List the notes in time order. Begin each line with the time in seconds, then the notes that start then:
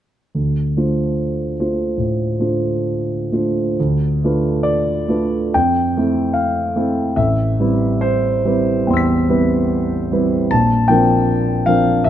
0.35 D2
0.77 A3 D4 F4 C5
1.59 A3 D4 F4 C5
1.98 A2
2.40 A3 D4 F4 C5
3.32 A3 D4 F4 C5
3.80 D2
4.24 A3 D4 F4 B4
4.63 D5
5.08 A3 D4 F4 B4
5.54 F2 G5
5.97 A3 C4 E4 A4
6.34 F5
6.76 A3 C4 E4 A4
7.16 A1 E5
7.60 G3 C4 E4 B4
8.01 C5
8.45 G3 C4 E4 B4
8.87 E2 G5 C6
8.93 E6 B6
9.29 G3 C4 E4 B4
10.12 G3 C4 E4 B4
10.51 A#1 A5
10.88 F3 C4 D4 A#4 G5
11.66 F3 C4 D4 A#4 F5
12.04 C2 E5